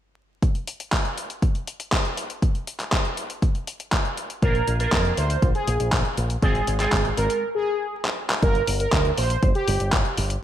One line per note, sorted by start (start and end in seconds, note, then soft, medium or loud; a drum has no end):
0.42 kick loud
0.42 closed hi-hat soft
0.55 closed hi-hat soft
0.67 closed hi-hat medium
0.80 closed hi-hat soft
0.92 kick loud
0.92 clap loud
0.92 closed hi-hat soft
1.05 closed hi-hat soft
1.18 closed hi-hat medium
1.30 closed hi-hat soft
1.42 kick loud
1.42 closed hi-hat soft
1.55 closed hi-hat soft
1.68 closed hi-hat medium
1.80 closed hi-hat medium
1.92 kick loud
1.92 clap loud
1.92 closed hi-hat medium
2.05 closed hi-hat soft
2.17 closed hi-hat medium
2.30 closed hi-hat soft
2.42 kick loud
2.42 closed hi-hat soft
2.55 closed hi-hat soft
2.67 closed hi-hat medium
2.80 clap soft
2.80 closed hi-hat medium
2.92 kick loud
2.92 clap loud
2.92 closed hi-hat soft
3.05 closed hi-hat soft
3.17 closed hi-hat medium
3.30 closed hi-hat medium
3.42 kick loud
3.42 closed hi-hat medium
3.55 closed hi-hat soft
3.67 closed hi-hat medium
3.80 closed hi-hat medium
3.92 kick loud
3.92 clap loud
3.92 closed hi-hat medium
4.05 closed hi-hat soft
4.17 closed hi-hat medium
4.30 closed hi-hat soft
4.42 4.60 A#1 medium
4.42 4.77 A#2 medium
4.42 4.77 A#3 medium
4.42 4.77 D4 medium
4.42 4.77 F4 medium
4.42 4.74 A#4 loud
4.42 4.77 A#4 medium
4.42 kick loud
4.42 closed hi-hat soft
4.55 closed hi-hat soft
4.67 4.85 A#1 medium
4.67 closed hi-hat medium
4.79 6.40 A#2 medium
4.79 6.39 A#3 medium
4.79 6.39 D4 medium
4.79 6.39 F4 medium
4.79 6.39 A#4 medium
4.79 5.11 A#4 medium
4.79 closed hi-hat medium
4.92 5.10 F2 medium
4.92 kick loud
4.92 clap loud
4.92 closed hi-hat soft
5.05 closed hi-hat soft
5.17 5.35 D2 medium
5.17 5.49 C5 loud
5.17 closed hi-hat medium
5.30 closed hi-hat soft
5.42 5.51 A#1 medium
5.42 kick loud
5.42 closed hi-hat medium
5.55 5.96 G#4 medium
5.55 closed hi-hat soft
5.67 5.76 A#1 medium
5.67 closed hi-hat medium
5.80 5.89 A#1 medium
5.80 closed hi-hat soft
5.92 6.01 A#1 medium
5.92 kick loud
5.92 clap loud
5.92 closed hi-hat soft
6.05 closed hi-hat soft
6.17 6.35 A#1 medium
6.17 closed hi-hat medium
6.30 closed hi-hat soft
6.42 6.60 G#1 medium
6.42 6.77 G#2 medium
6.42 6.77 G#3 medium
6.42 6.77 C4 medium
6.42 6.77 F4 medium
6.42 6.74 G#4 loud
6.42 6.77 G5 medium
6.42 kick loud
6.42 closed hi-hat soft
6.55 closed hi-hat soft
6.67 6.85 G#1 medium
6.67 closed hi-hat medium
6.80 7.43 G#2 medium
6.80 7.43 G#3 medium
6.80 7.43 C4 medium
6.80 7.43 F4 medium
6.80 7.11 G#4 medium
6.80 7.43 G5 medium
6.80 clap soft
6.80 closed hi-hat soft
6.92 7.10 G#1 medium
6.92 kick loud
6.92 clap loud
6.92 closed hi-hat soft
7.05 closed hi-hat soft
7.17 7.26 G#1 medium
7.17 7.49 A#4 medium
7.17 closed hi-hat medium
7.30 closed hi-hat soft
7.55 7.96 G#4 loud
8.05 clap medium
8.30 clap medium
8.43 8.60 G1 loud
8.43 8.74 A#4 loud
8.43 kick loud
8.43 closed hi-hat medium
8.55 closed hi-hat soft
8.67 8.86 G1 medium
8.67 open hi-hat loud
8.80 9.11 A#4 medium
8.80 closed hi-hat medium
8.93 9.11 D2 medium
8.93 kick loud
8.93 clap loud
8.93 closed hi-hat medium
9.05 closed hi-hat soft
9.18 9.36 A#1 medium
9.18 9.49 C5 loud
9.18 open hi-hat loud
9.30 closed hi-hat medium
9.43 9.52 G1 medium
9.43 kick loud
9.43 closed hi-hat medium
9.55 9.97 G4 loud
9.55 closed hi-hat soft
9.68 9.77 G1 medium
9.68 open hi-hat loud
9.80 9.89 G1 medium
9.80 closed hi-hat medium
9.93 10.02 G1 medium
9.93 kick loud
9.93 clap loud
9.93 closed hi-hat medium
10.05 closed hi-hat soft
10.17 10.36 G1 medium
10.17 open hi-hat loud
10.30 closed hi-hat medium